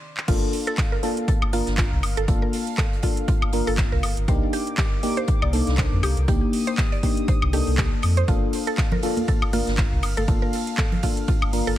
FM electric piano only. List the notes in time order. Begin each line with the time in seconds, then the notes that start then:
0.28 A#3 D4 F4 A4
1.03 A#3 D4 F4 A4
1.53 A#3 D4 F4 A#4
2.28 A#3 D4 F4 A4
3.03 A#3 D4 F4 A4
3.53 A#3 D4 F4 A#4
4.28 A#3 D4 D#4 G4
5.03 A#3 D4 D#4 G4
5.53 A#3 D4 D#4 A4
6.28 A#3 D4 D#4 G4
7.03 A#3 D4 D#4 G4
7.53 A#3 D4 D#4 A4
8.28 A#3 D4 F4 A4
9.03 A#3 D4 F4 A4
9.53 A#3 D4 F4 A#4
10.28 A#3 D4 F4 A4
11.03 A#3 D4 F4 A4
11.53 A#3 D4 F4 A#4